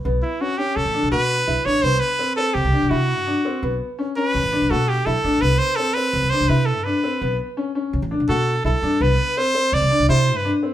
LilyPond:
<<
  \new Staff \with { instrumentName = "Trumpet" } { \time 5/4 \key b \phrygian \tempo 4 = 167 r8 e'8 fis'8 g'8 a'4 b'4. cis''8 | c''8 b'4 a'8 g'4 fis'2~ | fis'8 r4 b'4. a'8 g'8 a'4 | b'8 c''8 a'8 b'4 c''8 b'8 a'8 b'4~ |
b'8 r2 r8 a'4 a'4 | b'4 c''4 d''4 c''8. b'8 r8. | }
  \new Staff \with { instrumentName = "Grand piano" } { \time 5/4 \key b \phrygian b4 cis'8 cis'4 d'8 fis'4 e'8 d'8 | b4 c'8 c'4 d'8 e'4 d'8 c'8 | b4 cis'8 cis'4 d'8 fis'4 e'8 d'8 | b4 c'8 c'4 d'8 e'4 d'8 c'8 |
b4 cis'8 cis'4 d'8 fis'4 e'8 d'8 | b4 c'8 c'4 d'8 e'4 d'8 c'8 | }
  \new Staff \with { instrumentName = "Upright bass" } { \clef bass \time 5/4 \key b \phrygian b,,8 r4. b,,16 a,,8 b,,16 b,4 b,,16 r16 a,,8 | c,8 r4. c,16 c,16 r16 c,16 c8. g,8 r8. | b,,8 r4. b,,16 a,,8 b,,16 b,4 b,,16 r16 a,,8 | c,8 r4. c,16 c,16 r16 c,16 c8. g,8 r8. |
b,,8 r4. b,,16 a,,8 b,,16 b,4 b,,16 r16 g,8 | c,8 r4. c,16 c,16 r16 c,16 c8. g,8 r8. | }
>>